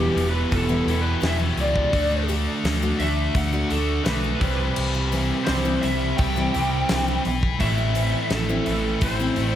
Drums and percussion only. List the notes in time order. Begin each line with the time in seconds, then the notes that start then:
0.17 open hi-hat
0.52 kick, open hi-hat
0.88 open hi-hat
1.23 snare, open hi-hat
1.57 open hi-hat
1.76 kick
1.93 kick, open hi-hat
2.29 open hi-hat
2.65 snare, open hi-hat
3.00 open hi-hat
3.35 kick, open hi-hat
3.70 open hi-hat
4.06 snare, open hi-hat
4.41 kick, open hi-hat
4.76 crash
5.13 open hi-hat
5.47 snare, open hi-hat
5.83 open hi-hat
6.18 kick, open hi-hat
6.54 open hi-hat
6.89 snare, open hi-hat
7.25 open hi-hat
7.43 kick
7.60 kick, open hi-hat
7.95 open hi-hat
8.30 snare, open hi-hat
8.66 open hi-hat
9.01 kick, open hi-hat
9.36 open hi-hat